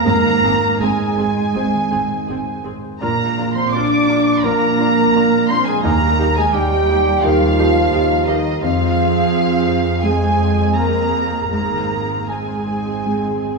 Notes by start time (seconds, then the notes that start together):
Already playing: G#3 C4 G#4 C5 G#5
0.03 G#1 G#2 A#3 C4 G#4 A#4 A#5
0.25 D#3
0.43 G#1 G#3 C4 G#4
0.63 C5
0.79 G#1 G#3 C4 G#4 G#5
1.00 C5
1.17 G#1 C4 G#4 C6
1.37 C5
1.54 G#1 G#2 G#3 C4 G#4 C5
1.74 D#3
1.91 G#1 G#3 C4 G#4
2.10 C5
2.27 G#1 C4 G#4
2.47 C5
2.64 G#1 C4 G#4 C6
2.83 C5
3.00 A#1 A#2 A#3 D4 F4 A#4 A#5
3.18 A#3
3.37 F3 D4 F4
3.54 C4 A#4 C5 C6
3.72 A#1 D4 F4 D5 D6
4.08 D4 F4 A#5
4.26 D5
4.42 A#1 A#2 F3 A#3 D4 F4 A#4 A#5
4.62 A#3
4.79 F3 D4 F4
4.96 A#4
5.14 A#1 D4 F4
5.31 D5
5.48 C4 D4 F4 C5 A#5 C6
5.65 G#3 G#4 D5 G#5
5.82 D#2 D#3 A#3 D#4 G4 A#4 A#5
6.02 G3
6.18 D#4 G4
6.36 G#3 G4 G#4 G#5
6.52 D#2 G3 D#4 G4 D#5 G5
6.71 A#5
6.88 D#4 G4 G5
7.05 A#5
7.22 D#2 D#3 F3 G3 D#4 F4 G4 A#4 F5
7.40 G3
7.58 D#4 G4
7.75 G4
7.92 D#2 D#4 G4 D#5
8.10 A#5
8.26 D#3 D#4 G4 D#5 G5
8.45 A#5
8.61 F2 F3 C4 F4 G#4 F5
8.79 G#3
8.98 C4
9.15 G#4
9.33 C5
9.50 G#5
9.68 C5
9.86 G#5
10.02 F3 G#3 C4 G#4 G#5
10.22 G#3
10.40 C4
10.75 A#3 A#4 A#5
10.95 G#5
11.13 C5
11.33 G#5
11.51 G#1 G#2 A#3 C4 G#4 A#4 A#5
11.71 D#3
11.90 G#3
12.10 G#4
12.27 G#3 C4 G#4 G#5
12.48 C5
12.67 G#5
12.87 C5
13.06 G#2 G#3 C4 G#4
13.25 D#3
13.44 G#3